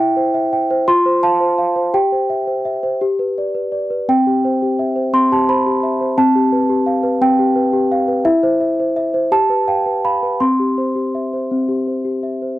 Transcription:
0.00 0.84 E4 medium
0.00 0.28 E5 medium
0.00 0.51 G5 loud
0.17 0.45 C5 medium
0.34 0.62 E5 medium
0.53 0.80 G5 medium
0.71 0.88 C5 medium
0.88 1.90 F4 medium
0.88 1.23 C6 loud
1.06 1.33 C5 medium
1.23 1.51 F5 medium
1.23 1.94 A5 medium
1.40 1.69 C5 soft
1.58 1.86 F5 medium
1.76 1.93 C5 soft
1.94 2.98 G4 medium
1.94 3.01 G5 medium
2.12 2.40 C5 soft
2.30 2.58 E5 soft
2.47 2.76 C5 soft
2.65 2.94 E5 soft
2.83 3.01 C5 soft
3.01 4.05 G4 medium
3.19 3.48 B4 soft
3.38 3.66 D5 soft
3.55 3.83 B4 soft
3.72 4.01 D5 soft
3.90 4.08 B4 soft
4.09 5.12 C4 medium
4.09 5.14 G5 medium
4.27 4.55 G4 soft
4.45 4.72 C5 soft
4.62 4.90 G4 soft
4.79 5.07 E5 medium
4.96 5.24 C5 soft
5.13 6.15 C4 medium
5.13 5.31 C6 medium
5.32 5.59 G4 soft
5.32 5.49 A5 medium
5.49 5.77 C5 soft
5.49 6.18 B5 medium
5.66 5.94 G4 soft
5.83 6.11 E5 medium
6.01 6.18 C5 soft
6.18 7.20 C4 medium
6.18 7.21 A5 medium
6.35 6.63 G4 soft
6.52 6.80 B4 medium
6.69 6.97 G4 soft
6.86 7.14 F5 medium
7.03 7.31 B4 medium
7.21 8.22 C4 medium
7.21 8.25 G5 loud
7.39 7.66 G4 soft
7.56 7.83 B4 medium
7.73 8.01 G4 medium
7.92 8.19 F5 medium
8.08 8.25 B4 soft
8.25 9.28 E4 medium
8.25 8.59 E5 loud
8.43 8.71 C5 medium
8.61 8.89 E5 medium
8.80 9.07 C5 soft
8.96 9.25 E5 medium
9.14 9.32 C5 medium
9.32 10.37 G4 medium
9.32 9.68 A5 loud
9.50 9.78 B4 soft
9.68 9.97 F5 soft
9.68 10.04 G5 medium
9.86 10.15 B4 soft
10.04 10.33 F5 soft
10.04 10.41 B5 medium
10.23 10.41 B4 soft
10.40 11.50 C4 medium
10.40 12.24 C6 medium
10.60 10.89 G4 soft
10.78 11.07 C5 soft
10.95 11.25 G4 soft
11.15 11.44 E5 soft
11.33 11.62 C5 soft
11.51 12.57 C4 soft
11.68 11.98 G4 soft
11.87 12.17 C5 soft
12.05 12.35 G4 soft
12.23 12.53 E5 soft
12.42 12.59 C5 soft

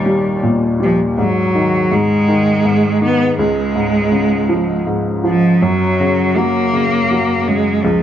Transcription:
0.00 1.13 D#2 soft
0.00 0.42 A#2 soft
0.00 1.13 D#3 soft
0.00 0.44 G3 medium
0.06 0.79 G3 soft
0.43 1.15 A#2 soft
0.80 0.99 F3 medium
0.80 1.16 G3 soft
1.18 1.90 G#2 soft
1.18 1.95 F#3 medium
1.55 2.27 D#3 soft
1.92 2.64 G#2 soft
1.92 3.02 G#3 medium
2.28 3.00 D#3 soft
2.65 3.36 G#2 soft
3.01 3.37 D#3 soft
3.01 3.37 B3 medium
3.39 5.57 C#2 medium
3.39 4.83 G#3 medium
3.76 4.85 G#2 soft
4.12 5.57 C#3 soft
4.49 5.22 F3 soft
4.87 5.59 G#2 soft
5.24 5.60 F3 soft
5.24 5.63 F3 medium
5.62 7.79 F#2 soft
5.62 6.38 F#3 medium
6.00 6.72 C#3 soft
6.36 7.09 F#3 soft
6.36 7.49 A#3 medium
6.73 7.47 C#3 soft
7.11 7.82 F#3 soft
7.48 7.83 C#3 soft
7.48 7.85 G#3 medium
7.83 8.03 C#2 medium
7.83 8.03 F3 medium

